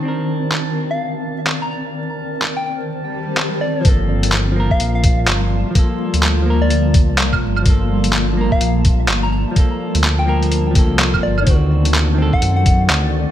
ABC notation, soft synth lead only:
X:1
M:4/4
L:1/16
Q:"Swing 16ths" 1/4=126
K:Gm
V:1 name="Soft synth lead"
z6 z f2 z4 b b z | z4 z g g z6 z d2 | z6 z f2 f2 z4 z | z6 z d3 z6 |
z6 z f2 z4 b b z | z4 z g g z6 z d2 | z6 z ^f2 f2 z4 z |]